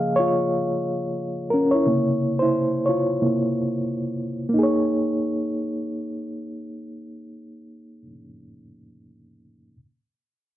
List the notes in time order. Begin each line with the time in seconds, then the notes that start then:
Already playing: C#3 F3 A#3 G#4 D#5 F5
0.16 F4 C#5
1.50 C#4 A#4
1.71 E4 C#5
1.86 C3 C#3 A#3
2.39 E4 C5
2.86 F4 C#5
3.22 C3 A#3 E4
4.49 A#3
4.54 D#4
4.59 G#4
4.63 C#5